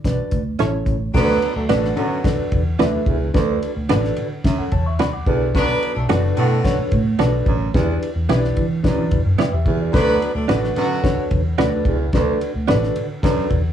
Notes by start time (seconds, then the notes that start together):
0.04 B1 D4 F#4 B4 D5, kick, snare, closed hi-hat
0.19 muted fingered electric bass stroke
0.31 D2, kick, closed hi-hat
0.59 A1 C#4 E4 A4 C#5, snare, closed hi-hat
0.86 A1, kick, closed hi-hat
1.13 D2 F#3 B3 D4 F#4 A4 B4 D5, kick, snare, crash
1.42 ride
1.55 D2 F#3 A3 D4 A4
1.69 A1 D3 F#3 B3 D4 F#4 A4 B4 D5, snare, ride
1.84 snare
1.96 F#2 D3 F#3 B3 F#4, ride
2.24 D4 F#4 A4 B4 D5, kick, snare, ride
2.38 muted fingered electric bass stroke
2.52 E2, kick, ride
2.79 D2 D4 F#4 A4 B4 D5 E5, snare, ride
3.06 C#2 E2, kick, ride
3.34 D2 D4 F#4 A4 B4 D5, kick, snare, ride
3.63 ride
3.76 D2
3.89 A1 D4 F#4 A4 B4 D5, snare, ride
4.04 snare
4.17 D3, ride
4.44 F#2 E5, kick, snare, ride
4.58 A4 F#5, muted fingered electric bass stroke
4.72 E2 C#5 A5, kick, ride
4.86 E5 C#6
4.99 D2 D4 F#4 B4 D5 B5, snare, ride
5.13 F#5 D6
5.26 B1 E2 D4 F#4 A4 B4 D5, kick, ride
5.54 B2 F#3 B3 D4 B4, kick, snare, ride
5.83 ride
5.95 B1 F#3 A3 D4 A4
6.08 F#1 D3 F#3 B3 D4 F#4 A4 B4 D5, snare, ride
6.36 A2 B2 D3 F#3 B3 F#4, ride
6.64 D4 F#4 A4 B4 C#5, kick, snare, ride
6.78 muted fingered electric bass stroke
6.92 A2, kick, ride
7.19 B1 B3 D4 F#4 A4 B4 D5, snare, ride
7.46 A1 F#2, kick, ride
7.74 E2 D4 E4 G4 B4 D5, kick, snare, ride
8.03 ride
8.16 E2
8.29 B1 B3 D4 E4 G4 B4 D5, snare, ride
8.44 snare
8.56 E3, kick, ride
8.84 F#2 D4 E4 G4 B4 D5, kick, snare, ride
8.98 E3
9.11 E2, kick, ride
9.26 F#2
9.38 B3 E4 G4 B4 D5 G5, snare, ride
9.53 E2 G4 E5
9.66 E2 E3, kick, ride
9.81 F#4 D5
9.93 D2 F#3 B3 D4 F#4 A4 B4 D5, kick, snare, ride
10.22 ride
10.34 D2 F#3 A3 D4 A4
10.48 A1 D3 F#3 B3 D4 F#4 A4 B4 D5, snare, ride
10.64 snare
10.76 F#2 D3 F#3 B3 F#4, ride
11.04 D4 F#4 A4 B4 C#5, kick, snare, ride
11.17 muted fingered electric bass stroke
11.31 E2, kick, ride
11.58 D2 D4 F#4 A4 B4 D5, snare, ride
11.85 C#2 E2, kick, ride
12.13 D2 D4 F#4 A4 B4 D5, kick, snare, ride
12.41 ride
12.55 D2
12.68 A1 D4 F#4 A4 B4 D5, snare, ride
12.83 snare
12.96 D3, ride
13.23 F#2 D4 F#4 A4 B4 D5, kick, snare, ride
13.38 muted fingered electric bass stroke
13.50 E2, kick, ride